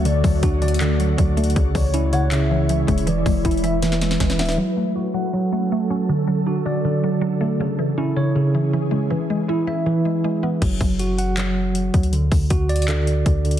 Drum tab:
CC |------------------------------------------------|------------------------------------------------|------------------------------------------------|------------------------------------------------|
HH |x-----o-----x-----x-x-x-x-----x-----x-----x-x-x-|x-----o-----x-----x-----x-----------x-----x--x--|x-----o-----x-x-x-x-----x-----x-----x-----x-x-x-|------------------------------------------------|
CP |------------------------x-----------------------|------------------------x-----------------------|------------------------------------------------|------------------------------------------------|
SD |------------------------------------------------|------------------------------------------------|------------------------o--o--o--o--o--o--o--o--|------------------------------------------------|
BD |------o-----o-----------------------o-----------|o-----o-----------------------------------o-----|------o-----o-----------------------o-----------|------------------------------------------------|

CC |------------------------------------------------|------------------------------------------------|------------------------------------------------|x-----------------------------------------------|
HH |------------------------------------------------|------------------------------------------------|------------------------------------------------|x-----o-----x-----x-----x-----------x-----x--x--|
CP |------------------------------------------------|------------------------------------------------|------------------------------------------------|------------------------x-----------------------|
SD |------------------------------------------------|------------------------------------------------|------------------------------------------------|------------------------------------------------|
BD |------------------------------------------------|------------------------------------------------|------------------------------------------------|o-----o-----------------------------------o-----|

CC |------------------------------------------------|
HH |x-----o-----x-----x-x-x-x-----x-----x-----x-x---|
CP |------------------------x-----------------------|
SD |------------------------------------------------|
BD |------o-----o-----------------------o-----------|